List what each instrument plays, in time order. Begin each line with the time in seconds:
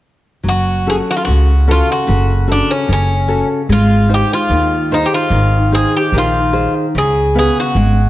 0.43 upright bass F#1, nylon-string guitar F#3
0.48 bouzouki F#4
0.86 nylon-string guitar C#4 F#4 A4, bouzouki G#4
1.11 bouzouki F#4
1.17 bouzouki F4
1.25 upright bass C#2, nylon-string guitar C#3, bouzouki F#4
1.68 nylon-string guitar C#4 F#4 A4, bouzouki F4
1.92 bouzouki F#4
2.07 upright bass F#1, nylon-string guitar C#3
2.47 nylon-string guitar C#4 F#4 A4
2.52 bouzouki D4
2.71 bouzouki C#4
2.88 upright bass F#1, nylon-string guitar C#3
2.93 bouzouki C#4
3.28 nylon-string guitar C#4 F#4 A4
3.69 upright bass G#1, nylon-string guitar G#3, bouzouki F4
4.09 nylon-string guitar D#4 G#4 C5
4.14 bouzouki G4
4.33 bouzouki F4
4.50 upright bass D#2, nylon-string guitar D#3
4.91 nylon-string guitar D#4 G#4 C5, bouzouki D#4
5.06 bouzouki G4
5.14 bouzouki F4
5.30 upright bass G#1, nylon-string guitar D#3
5.72 nylon-string guitar D#4 G#4 C5, bouzouki G#4
5.97 bouzouki G4
6.12 upright bass A#1, nylon-string guitar D#3
6.18 bouzouki F4
6.53 nylon-string guitar D#4 G#4 C5
6.95 upright bass C#2, nylon-string guitar C#3, bouzouki G#4
7.35 nylon-string guitar B3 C#4 F5, bouzouki G#4
7.60 bouzouki F#4
7.75 upright bass G#1, nylon-string guitar G#3